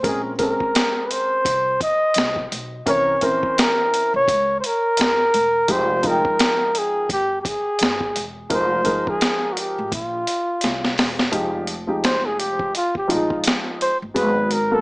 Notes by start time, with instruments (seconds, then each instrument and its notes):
0.03 upright bass A#1, upright piano G#3 C4 C#4 A#4, kick, closed hi-hat
0.07 flugelhorn G#4
0.38 upright piano G#3 C4 C#4 A#4, kick, closed hi-hat
0.42 flugelhorn A#4
0.60 kick
0.75 snare, closed hi-hat
1.06 flugelhorn B4
1.11 flugelhorn C5, closed hi-hat
1.45 upright bass C2, kick, closed hi-hat
1.81 flugelhorn D#5, kick, closed hi-hat
2.14 upright bass C2, snare, closed hi-hat
2.36 kick
2.52 upright bass B1, closed hi-hat
2.86 upright bass C2, upright piano E3 C4 C#4 A#4, flugelhorn C#5, kick, closed hi-hat
3.21 upright bass A#1, upright piano E3 C4 C#4 A#4, flugelhorn C5, kick, closed hi-hat
3.43 kick
3.58 flugelhorn A#4, snare, closed hi-hat
3.94 closed hi-hat
4.14 upright bass C2, flugelhorn C#5
4.28 upright bass C#2, kick, closed hi-hat
4.60 flugelhorn C5, closed hi-hat
4.66 flugelhorn A#4
4.97 upright bass E2, snare, closed hi-hat
5.34 upright bass E1, closed hi-hat
5.68 upright bass F1, upright piano F3 G#3 D#4 G4, flugelhorn C5, kick, closed hi-hat
6.03 upright piano F3 G#3 D#4 F4, kick, closed hi-hat
6.07 flugelhorn A#4, upright piano G5
6.25 kick
6.39 snare, closed hi-hat
6.75 flugelhorn G#4, closed hi-hat
7.09 upright bass G1, flugelhorn G4, kick, closed hi-hat
7.42 flugelhorn G4, kick, closed hi-hat
7.48 flugelhorn G#4
7.79 upright bass G1, snare, closed hi-hat
8.01 kick
8.16 upright bass E1, closed hi-hat
8.50 upright bass F1, upright piano F3 G#3 D#4 A#4, kick, closed hi-hat
8.54 flugelhorn C5
8.84 upright bass G1, upright piano F3 G#3 D#4 A#4, kick, closed hi-hat
9.07 flugelhorn G#4, kick
9.21 snare, closed hi-hat
9.53 flugelhorn F#4
9.57 flugelhorn G4, closed hi-hat
9.78 upright bass G#1
9.92 upright bass A#1, flugelhorn F4, kick, closed hi-hat
10.27 closed hi-hat
10.61 upright bass C2, snare, closed hi-hat
10.84 snare
10.98 upright bass E1, snare, open hi-hat
11.19 snare
11.32 upright bass F1, upright piano F3 G#3 D#4 G4, kick, closed hi-hat
11.67 closed hi-hat
11.87 upright piano F3 G#3 D#4 G4
12.04 flugelhorn C5, snare, closed hi-hat
12.26 flugelhorn G#4
12.39 flugelhorn G4, closed hi-hat
12.59 kick
12.75 flugelhorn F4, closed hi-hat
12.95 flugelhorn G4, kick
13.08 upright bass A#1, upright piano F3 G3 D#4 F4, closed hi-hat
13.12 upright piano G#3, flugelhorn D#4
13.30 kick
13.44 snare, closed hi-hat
13.81 flugelhorn C5, closed hi-hat
14.02 upright bass G1
14.14 upright bass G#1, upright piano F#3 G#3 B3 G#4, flugelhorn B4, kick, closed hi-hat
14.51 flugelhorn A#4, closed hi-hat
14.71 upright piano F#3 A#3 B3 A#4, flugelhorn A4